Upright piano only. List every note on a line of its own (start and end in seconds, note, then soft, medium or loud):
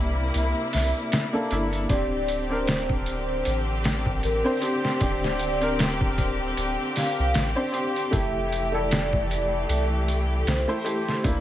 0.00 1.33 A#3 medium
0.00 1.33 D4 medium
0.00 1.52 E4 medium
0.00 1.30 G4 medium
1.33 1.46 A#3 medium
1.33 1.46 D4 medium
1.33 1.47 A4 medium
1.51 1.85 A#3 medium
1.51 1.86 D4 medium
1.51 1.86 E4 medium
1.90 2.45 C4 medium
1.90 2.45 D4 medium
1.90 2.46 G4 medium
2.50 4.40 C4 medium
2.50 4.41 D4 medium
2.50 4.41 A#4 medium
4.44 4.57 C4 medium
4.44 4.58 D4 medium
4.44 4.58 C5 loud
4.61 4.96 C4 medium
4.61 4.97 D4 medium
4.61 4.97 G4 medium
5.00 5.56 C4 medium
5.00 5.57 D4 medium
5.00 5.57 G4 medium
5.61 7.52 C4 medium
5.61 7.52 D4 medium
5.61 7.53 A#4 medium
7.55 7.69 C4 medium
7.55 7.69 D4 medium
7.55 7.69 C5 loud
7.72 8.08 C4 medium
7.72 8.08 D4 medium
7.72 8.08 G4 medium
8.11 8.67 A3 medium
8.11 8.68 E4 medium
8.11 8.68 G4 medium
8.72 10.63 A3 medium
8.72 10.64 E4 medium
8.72 10.64 A4 medium
10.68 10.81 A3 medium
10.68 10.81 E4 medium
10.68 10.81 C5 loud
10.84 11.20 A3 medium
10.84 11.20 E4 medium
10.84 11.20 G4 medium
11.24 11.40 A#3 medium
11.24 11.40 D4 medium
11.24 11.40 E4 medium